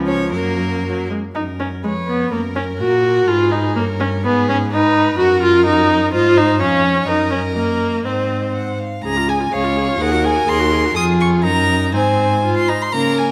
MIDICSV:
0, 0, Header, 1, 5, 480
1, 0, Start_track
1, 0, Key_signature, 6, "major"
1, 0, Tempo, 503778
1, 316, Time_signature, 2, 2, 24, 8
1, 1753, Tempo, 480769
1, 4153, Tempo, 471328
1, 5109, Key_signature, -5, "major"
1, 7033, Tempo, 493016
1, 8953, Tempo, 478469
1, 11353, Tempo, 498339
1, 13165, End_track
2, 0, Start_track
2, 0, Title_t, "Violin"
2, 0, Program_c, 0, 40
2, 70, Note_on_c, 0, 73, 73
2, 310, Note_off_c, 0, 73, 0
2, 316, Note_on_c, 0, 70, 59
2, 1035, Note_off_c, 0, 70, 0
2, 1280, Note_on_c, 0, 70, 36
2, 1744, Note_on_c, 0, 71, 32
2, 1758, Note_off_c, 0, 70, 0
2, 2244, Note_on_c, 0, 70, 37
2, 2259, Note_off_c, 0, 71, 0
2, 2703, Note_off_c, 0, 70, 0
2, 2709, Note_on_c, 0, 70, 35
2, 3193, Note_on_c, 0, 71, 44
2, 3208, Note_off_c, 0, 70, 0
2, 3673, Note_off_c, 0, 71, 0
2, 3685, Note_on_c, 0, 73, 41
2, 4160, Note_on_c, 0, 71, 50
2, 4175, Note_off_c, 0, 73, 0
2, 4636, Note_off_c, 0, 71, 0
2, 4645, Note_on_c, 0, 71, 48
2, 5105, Note_off_c, 0, 71, 0
2, 5111, Note_on_c, 0, 66, 53
2, 5363, Note_on_c, 0, 70, 44
2, 5378, Note_off_c, 0, 66, 0
2, 5591, Note_on_c, 0, 66, 43
2, 5606, Note_off_c, 0, 70, 0
2, 5838, Note_on_c, 0, 70, 48
2, 5853, Note_off_c, 0, 66, 0
2, 6073, Note_off_c, 0, 70, 0
2, 6078, Note_on_c, 0, 75, 49
2, 6304, Note_on_c, 0, 72, 41
2, 6319, Note_off_c, 0, 75, 0
2, 6539, Note_off_c, 0, 72, 0
2, 6545, Note_on_c, 0, 77, 42
2, 6783, Note_on_c, 0, 73, 44
2, 6799, Note_off_c, 0, 77, 0
2, 7009, Note_off_c, 0, 73, 0
2, 7015, Note_on_c, 0, 75, 53
2, 7460, Note_off_c, 0, 75, 0
2, 7502, Note_on_c, 0, 75, 37
2, 7972, Note_off_c, 0, 75, 0
2, 7978, Note_on_c, 0, 75, 34
2, 8409, Note_off_c, 0, 75, 0
2, 8470, Note_on_c, 0, 78, 36
2, 8704, Note_on_c, 0, 77, 44
2, 8719, Note_off_c, 0, 78, 0
2, 8944, Note_off_c, 0, 77, 0
2, 8949, Note_on_c, 0, 82, 78
2, 9198, Note_on_c, 0, 80, 61
2, 9214, Note_off_c, 0, 82, 0
2, 9438, Note_on_c, 0, 77, 63
2, 9453, Note_off_c, 0, 80, 0
2, 9917, Note_on_c, 0, 78, 75
2, 9932, Note_off_c, 0, 77, 0
2, 10161, Note_on_c, 0, 80, 75
2, 10176, Note_off_c, 0, 78, 0
2, 10394, Note_on_c, 0, 84, 90
2, 10409, Note_off_c, 0, 80, 0
2, 10868, Note_off_c, 0, 84, 0
2, 10874, Note_on_c, 0, 87, 96
2, 10954, Note_off_c, 0, 87, 0
2, 11122, Note_on_c, 0, 85, 69
2, 11202, Note_off_c, 0, 85, 0
2, 11357, Note_on_c, 0, 82, 88
2, 11822, Note_off_c, 0, 82, 0
2, 11849, Note_on_c, 0, 80, 73
2, 12429, Note_off_c, 0, 80, 0
2, 12445, Note_on_c, 0, 84, 70
2, 12554, Note_on_c, 0, 82, 79
2, 12568, Note_off_c, 0, 84, 0
2, 12688, Note_on_c, 0, 84, 73
2, 12703, Note_off_c, 0, 82, 0
2, 12785, Note_on_c, 0, 82, 88
2, 12799, Note_off_c, 0, 84, 0
2, 13036, Note_on_c, 0, 80, 65
2, 13051, Note_off_c, 0, 82, 0
2, 13165, Note_off_c, 0, 80, 0
2, 13165, End_track
3, 0, Start_track
3, 0, Title_t, "Violin"
3, 0, Program_c, 1, 40
3, 71, Note_on_c, 1, 61, 56
3, 147, Note_off_c, 1, 61, 0
3, 307, Note_on_c, 1, 58, 52
3, 1031, Note_off_c, 1, 58, 0
3, 1769, Note_on_c, 1, 73, 42
3, 2211, Note_off_c, 1, 73, 0
3, 2241, Note_on_c, 1, 70, 47
3, 3206, Note_on_c, 1, 68, 51
3, 3221, Note_off_c, 1, 70, 0
3, 3695, Note_on_c, 1, 70, 50
3, 3710, Note_off_c, 1, 68, 0
3, 4162, Note_off_c, 1, 70, 0
3, 4167, Note_on_c, 1, 68, 52
3, 4630, Note_off_c, 1, 68, 0
3, 4644, Note_on_c, 1, 71, 55
3, 5124, Note_on_c, 1, 70, 63
3, 5139, Note_off_c, 1, 71, 0
3, 6062, Note_off_c, 1, 70, 0
3, 6068, Note_on_c, 1, 72, 63
3, 6550, Note_on_c, 1, 73, 56
3, 6566, Note_off_c, 1, 72, 0
3, 7044, Note_on_c, 1, 70, 61
3, 7058, Note_off_c, 1, 73, 0
3, 7990, Note_off_c, 1, 70, 0
3, 8003, Note_on_c, 1, 72, 41
3, 8707, Note_off_c, 1, 72, 0
3, 9441, Note_on_c, 1, 73, 62
3, 9925, Note_on_c, 1, 70, 73
3, 9940, Note_off_c, 1, 73, 0
3, 10862, Note_on_c, 1, 68, 63
3, 10878, Note_off_c, 1, 70, 0
3, 11349, Note_off_c, 1, 68, 0
3, 11370, Note_on_c, 1, 70, 65
3, 11829, Note_off_c, 1, 70, 0
3, 11846, Note_on_c, 1, 72, 60
3, 12547, Note_off_c, 1, 72, 0
3, 12794, Note_on_c, 1, 70, 65
3, 13165, Note_off_c, 1, 70, 0
3, 13165, End_track
4, 0, Start_track
4, 0, Title_t, "Viola"
4, 0, Program_c, 2, 41
4, 0, Note_on_c, 2, 53, 57
4, 315, Note_on_c, 2, 54, 44
4, 329, Note_off_c, 2, 53, 0
4, 757, Note_off_c, 2, 54, 0
4, 811, Note_on_c, 2, 54, 54
4, 1036, Note_off_c, 2, 54, 0
4, 1051, Note_on_c, 2, 56, 39
4, 1127, Note_off_c, 2, 56, 0
4, 1285, Note_on_c, 2, 63, 54
4, 1361, Note_off_c, 2, 63, 0
4, 1520, Note_on_c, 2, 61, 43
4, 1597, Note_off_c, 2, 61, 0
4, 1753, Note_on_c, 2, 56, 48
4, 1833, Note_off_c, 2, 56, 0
4, 1989, Note_on_c, 2, 59, 48
4, 2223, Note_off_c, 2, 59, 0
4, 2229, Note_on_c, 2, 58, 51
4, 2309, Note_off_c, 2, 58, 0
4, 2469, Note_on_c, 2, 61, 54
4, 2548, Note_off_c, 2, 61, 0
4, 2710, Note_on_c, 2, 66, 68
4, 3185, Note_on_c, 2, 65, 72
4, 3200, Note_off_c, 2, 66, 0
4, 3426, Note_on_c, 2, 63, 58
4, 3441, Note_off_c, 2, 65, 0
4, 3662, Note_off_c, 2, 63, 0
4, 3668, Note_on_c, 2, 58, 65
4, 3748, Note_off_c, 2, 58, 0
4, 3911, Note_on_c, 2, 61, 62
4, 3991, Note_off_c, 2, 61, 0
4, 4149, Note_on_c, 2, 59, 64
4, 4387, Note_off_c, 2, 59, 0
4, 4403, Note_on_c, 2, 61, 70
4, 4484, Note_off_c, 2, 61, 0
4, 4638, Note_on_c, 2, 63, 86
4, 5102, Note_off_c, 2, 63, 0
4, 5108, Note_on_c, 2, 66, 73
4, 5342, Note_off_c, 2, 66, 0
4, 5356, Note_on_c, 2, 65, 79
4, 5585, Note_off_c, 2, 65, 0
4, 5592, Note_on_c, 2, 63, 83
4, 6061, Note_off_c, 2, 63, 0
4, 6082, Note_on_c, 2, 65, 75
4, 6321, Note_on_c, 2, 63, 75
4, 6337, Note_off_c, 2, 65, 0
4, 6556, Note_off_c, 2, 63, 0
4, 6565, Note_on_c, 2, 61, 77
4, 7029, Note_off_c, 2, 61, 0
4, 7046, Note_on_c, 2, 63, 64
4, 7262, Note_off_c, 2, 63, 0
4, 7268, Note_on_c, 2, 61, 55
4, 7346, Note_off_c, 2, 61, 0
4, 7508, Note_on_c, 2, 58, 64
4, 7987, Note_on_c, 2, 60, 49
4, 8002, Note_off_c, 2, 58, 0
4, 8470, Note_off_c, 2, 60, 0
4, 8959, Note_on_c, 2, 68, 45
4, 9078, Note_on_c, 2, 65, 41
4, 9093, Note_off_c, 2, 68, 0
4, 9190, Note_on_c, 2, 68, 42
4, 9205, Note_off_c, 2, 65, 0
4, 9313, Note_on_c, 2, 65, 41
4, 9328, Note_off_c, 2, 68, 0
4, 9422, Note_off_c, 2, 65, 0
4, 9428, Note_on_c, 2, 68, 55
4, 9549, Note_on_c, 2, 65, 45
4, 9565, Note_off_c, 2, 68, 0
4, 9678, Note_on_c, 2, 68, 45
4, 9693, Note_off_c, 2, 65, 0
4, 9793, Note_on_c, 2, 65, 40
4, 9808, Note_off_c, 2, 68, 0
4, 9912, Note_off_c, 2, 65, 0
4, 9918, Note_on_c, 2, 68, 53
4, 10029, Note_on_c, 2, 66, 44
4, 10044, Note_off_c, 2, 68, 0
4, 10155, Note_on_c, 2, 68, 56
4, 10170, Note_off_c, 2, 66, 0
4, 10268, Note_on_c, 2, 66, 48
4, 10283, Note_off_c, 2, 68, 0
4, 10383, Note_off_c, 2, 66, 0
4, 10389, Note_on_c, 2, 68, 61
4, 10511, Note_on_c, 2, 66, 50
4, 10526, Note_off_c, 2, 68, 0
4, 10635, Note_on_c, 2, 68, 50
4, 10650, Note_off_c, 2, 66, 0
4, 10761, Note_on_c, 2, 66, 45
4, 10776, Note_off_c, 2, 68, 0
4, 10868, Note_off_c, 2, 66, 0
4, 10875, Note_on_c, 2, 65, 62
4, 11355, Note_on_c, 2, 63, 62
4, 11369, Note_off_c, 2, 65, 0
4, 11838, Note_on_c, 2, 60, 52
4, 11853, Note_off_c, 2, 63, 0
4, 12267, Note_off_c, 2, 60, 0
4, 12320, Note_on_c, 2, 65, 71
4, 12562, Note_on_c, 2, 63, 53
4, 12577, Note_off_c, 2, 65, 0
4, 12800, Note_off_c, 2, 63, 0
4, 12807, Note_on_c, 2, 58, 55
4, 13165, Note_off_c, 2, 58, 0
4, 13165, End_track
5, 0, Start_track
5, 0, Title_t, "Cello"
5, 0, Program_c, 3, 42
5, 0, Note_on_c, 3, 37, 53
5, 307, Note_on_c, 3, 42, 47
5, 321, Note_off_c, 3, 37, 0
5, 1087, Note_off_c, 3, 42, 0
5, 1275, Note_on_c, 3, 42, 36
5, 1742, Note_on_c, 3, 41, 36
5, 1756, Note_off_c, 3, 42, 0
5, 2219, Note_off_c, 3, 41, 0
5, 2225, Note_on_c, 3, 42, 36
5, 2713, Note_on_c, 3, 46, 39
5, 2728, Note_off_c, 3, 42, 0
5, 3182, Note_off_c, 3, 46, 0
5, 3188, Note_on_c, 3, 44, 43
5, 3672, Note_on_c, 3, 43, 48
5, 3687, Note_off_c, 3, 44, 0
5, 4148, Note_on_c, 3, 44, 49
5, 4164, Note_off_c, 3, 43, 0
5, 5103, Note_off_c, 3, 44, 0
5, 5109, Note_on_c, 3, 42, 57
5, 6072, Note_on_c, 3, 44, 50
5, 6087, Note_off_c, 3, 42, 0
5, 6553, Note_on_c, 3, 41, 49
5, 6568, Note_off_c, 3, 44, 0
5, 7024, Note_off_c, 3, 41, 0
5, 7030, Note_on_c, 3, 42, 50
5, 7945, Note_off_c, 3, 42, 0
5, 7983, Note_on_c, 3, 44, 38
5, 8737, Note_off_c, 3, 44, 0
5, 8946, Note_on_c, 3, 37, 52
5, 9374, Note_off_c, 3, 37, 0
5, 9434, Note_on_c, 3, 37, 58
5, 9856, Note_off_c, 3, 37, 0
5, 9906, Note_on_c, 3, 39, 62
5, 10328, Note_off_c, 3, 39, 0
5, 10384, Note_on_c, 3, 39, 64
5, 10810, Note_off_c, 3, 39, 0
5, 10869, Note_on_c, 3, 41, 66
5, 11347, Note_on_c, 3, 42, 69
5, 11362, Note_off_c, 3, 41, 0
5, 11828, Note_on_c, 3, 44, 59
5, 11842, Note_off_c, 3, 42, 0
5, 12594, Note_off_c, 3, 44, 0
5, 12794, Note_on_c, 3, 49, 55
5, 13165, Note_off_c, 3, 49, 0
5, 13165, End_track
0, 0, End_of_file